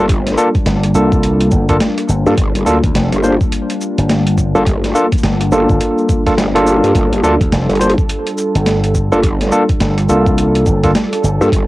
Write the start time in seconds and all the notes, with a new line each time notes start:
Already playing: G1 G3 A#3 D4 F4
0.09 kick, closed hi-hat, shaker
0.27 snare, closed hi-hat, shaker
0.38 A#3 D4 F4 A4, shaker
0.55 kick, closed hi-hat, shaker
0.66 G1, snare, closed hi-hat, shaker
0.84 cross-stick, closed hi-hat, shaker
0.95 C2 A#3 D4 F4 A4, shaker
1.12 kick, shaker
1.23 closed hi-hat, shaker
1.41 closed hi-hat, shaker
1.52 G1, kick, shaker
1.69 A#3 D4 F4 A4, kick, closed hi-hat, shaker
1.81 cross-stick, snare, closed hi-hat, shaker
1.98 cross-stick, closed hi-hat, shaker
2.09 G1, shaker
2.27 G2 A#3 D4 F4 A4, shaker
2.38 G1, kick, closed hi-hat, shaker
2.55 G1, closed hi-hat, shaker
2.66 D2 A#3 D4 F4 A4, shaker
2.84 D2, kick, closed hi-hat, shaker
2.95 F1, snare, closed hi-hat, shaker
3.12 G1, cross-stick, closed hi-hat, shaker
3.24 A#3 D4 F4 C5, shaker
3.41 kick, shaker
3.52 closed hi-hat, shaker
3.70 closed hi-hat, shaker
3.81 shaker
3.98 G1, closed hi-hat, shaker
4.09 snare, closed hi-hat, shaker
4.27 closed hi-hat, shaker
4.38 kick, shaker
4.55 G1 A#3 D4 F4 A4, shaker
4.66 kick, closed hi-hat, shaker
4.84 snare, closed hi-hat, shaker
4.95 A#3 D4 F4 A4, shaker
5.12 kick, closed hi-hat, shaker
5.18 shaker
5.23 G1, snare, closed hi-hat
5.41 cross-stick, closed hi-hat, shaker
5.52 G1 A#3 D4 F4 A4, shaker
5.69 G1, kick, shaker
5.81 closed hi-hat, shaker
5.98 shaker
6.09 kick, shaker
6.26 A#3 D4 F4 A4, kick, cross-stick, closed hi-hat, shaker
6.30 cross-stick
6.33 cross-stick
6.35 G1, cross-stick
6.38 cross-stick, snare, closed hi-hat, shaker
6.42 cross-stick
6.47 cross-stick
6.51 A#3 D4 F4 A4, cross-stick
6.56 cross-stick, closed hi-hat, shaker
6.67 shaker
6.84 G2, closed hi-hat, shaker
6.95 G1 A4, kick, closed hi-hat, shaker
7.12 G1, closed hi-hat, shaker
7.23 D2 A#3 D4 F4 A4, shaker
7.41 D2, kick, closed hi-hat, shaker
7.52 F1, snare, closed hi-hat, shaker
7.69 G1, cross-stick, closed hi-hat, shaker
7.75 closed hi-hat
7.80 A#3 D4 F4 C5, closed hi-hat, shaker
7.90 closed hi-hat
7.98 kick, shaker
8.09 closed hi-hat, shaker
8.27 closed hi-hat, shaker
8.38 shaker
8.55 G1, closed hi-hat, shaker
8.66 snare, closed hi-hat, shaker
8.84 closed hi-hat, shaker
8.95 kick, shaker
9.12 G1 A#3 D4 F4 A4, shaker
9.23 kick, closed hi-hat, shaker
9.41 snare, closed hi-hat, shaker
9.52 A#3 D4 F4 A4, shaker
9.69 kick, closed hi-hat, shaker
9.80 G1, snare, closed hi-hat, shaker
9.98 cross-stick, closed hi-hat, shaker
10.09 C2 A#3 D4 F4 A4, shaker
10.26 kick, shaker
10.38 closed hi-hat, shaker
10.55 closed hi-hat, shaker
10.66 G1, kick, shaker
10.84 A#3 D4 F4 A4, kick, cross-stick, closed hi-hat, shaker
10.89 cross-stick
10.95 cross-stick, snare, closed hi-hat, shaker
11.04 cross-stick
11.13 cross-stick, closed hi-hat, shaker
11.24 G1, shaker
11.41 G2 A#3 D4 F4 A4, shaker
11.52 G1, kick, closed hi-hat, shaker